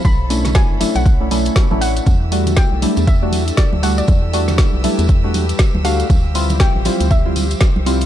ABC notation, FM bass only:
X:1
M:4/4
L:1/16
Q:"Swing 16ths" 1/4=119
K:Em
V:1 name="FM bass" clef=bass
B,,,4 z F,,, z B,,,4 z2 A,,,2 z | E,,4 z B,,, z E,,4 z2 D,,2 z | E,,4 z B,,, z E,,4 z2 D,,2 z | D,,4 z A,,, z D,,4 z2 C,,2 z |]